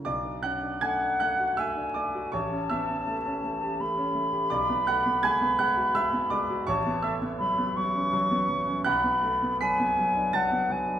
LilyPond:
<<
  \new Staff \with { instrumentName = "Flute" } { \time 3/4 \key b \dorian \tempo 4 = 82 r4 fis''4 gis''4 | a''2 b''4~ | b''2. | a''8 r8 b''8 cis'''4. |
b''4 gis''4 fis''8 gis''8 | }
  \new Staff \with { instrumentName = "Grand piano" } { \time 3/4 \key b \dorian <d'' d'''>8 <fis'' fis'''>8 <gis'' gis'''>8 <fis'' fis'''>8 <e'' e'''>8 <d'' d'''>8 | <cis'' cis'''>8 <e'' e'''>2 r8 | <d'' d'''>8 <fis'' fis'''>8 <gis'' gis'''>8 <fis'' fis'''>8 <e'' e'''>8 <d'' d'''>8 | <cis'' cis'''>8 <e'' e'''>2 r8 |
<fis'' fis'''>4 <b'' b'''>4 <a'' a'''>4 | }
  \new Staff \with { instrumentName = "Grand piano" } { \time 3/4 \key b \dorian b,,16 d'16 cis'16 d'16 a16 d'16 a16 fis'16 a16 d'16 a16 fis'16 | a,,16 cis'16 b16 cis'16 a16 cis'16 a16 g'16 a16 cis'16 a16 g'16 | b,,16 b16 a16 b16 gis16 b16 gis16 fis'16 gis16 b16 gis16 fis'16 | a,,16 b16 a16 b16 fis16 b16 fis16 cis'16 fis16 b16 fis16 cis'16 |
b,,16 b16 a16 b16 fis16 b16 fis16 d'16 fis16 b16 fis16 d'16 | }
>>